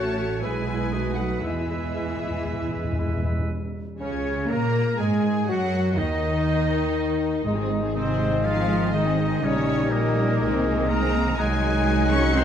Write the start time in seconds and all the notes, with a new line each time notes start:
Already playing: A1 A3 C#4 F#4 C#5 A5 F#6
0.17 A3 F#4 C#5 F#6
0.42 B1 G#3 B3 E4 G#4 B4 G#5 E6
0.67 B3 G#4 B4 E6
0.91 A3 D#4 F#4 B4 D#6
1.17 F#3 A3 F#4 B4 F#5 D#6
1.43 E2 E3 G#3 E4 G#4 B4 E5 E6
1.52 E2
1.60 E2
1.67 E2 B4 E6
1.71 E2 G#3 E4
1.84 E2
1.91 E2 E6
1.96 E2 G#3 E4 B4
2.06 E2
2.14 E2
2.20 E2 G#3 E4 B4 E6
2.31 E2
2.38 E2
2.45 E2 G#3 E4 B4 E6
2.54 E2
2.61 E2
2.68 E2 E6
2.73 E2 G#3 E4 B4
2.84 E2
2.93 E2
2.98 E2 G#3 E4 B4 E6
3.08 E2
3.16 E2
3.24 E2 G#3 E4 B4 E6
3.31 E2
3.39 E2
3.99 C#2 C#3 C#4 C#5
4.49 A#2 A#3 A#4 A#5
4.99 G#2 G#3 G#4 G#5
5.48 F#2 F#3 F#4 F#5
5.97 D#2 D#3 D#4 D#5
7.44 G#1 G#2 G#3 D#4 D#5 D#6
7.57 D#3 C4 G#4
7.70 G#3 D#4
7.83 D#3 C4 G#4
7.95 C3 G#3 C4 D#4 C5 D#5 D#6
8.07 D#3 C4 G#4
8.19 G#3 D#4
8.30 D#3 C4 G#4
8.43 F3 G#3 D#4 F4 F5
8.55 D#3 C4 G#4
8.68 G#3 D#4
8.80 D#3 C4 G#4
8.93 D#3 G#3 D#4 D#5 D#6
9.05 D#3 C4 G#4
9.17 G#3 D#4
9.29 D#3 C4 G#4
9.42 A#1 C#3 G3 C#4 D#4 C#5 D#5 D#6
9.55 D#3 A#3 C#4 D#4
9.66 G3 C#4 D#4
9.79 D#3 A#3 C#4 D#4
9.90 A#2 G3 A#3 A#4 D#5 D#6
9.94 C#4 D#4
10.03 D#3 A#3 C#4 D#4
10.16 G3 C#4 D#4
10.28 D#3 A#3 C#4 D#4
10.40 C2 G#3 C4 D#4 D#5 D#6
10.53 D#3 C4 D#4
10.65 G#3 C4 D#4
10.77 D#3 C4 D#4
10.89 G#3 A#3 C4 D#4 A#4 A#5
11.02 D#3 C4 D#4
11.14 G#3 C4 D#4
11.26 D#3 C4 D#4
11.37 C2 D#3 F#3 G#3 D#4 F#4 G#4 D#5 G#5 F#6
12.11 C#4 C#5 C#6
12.34 F#3 C4 D#4 C5 C6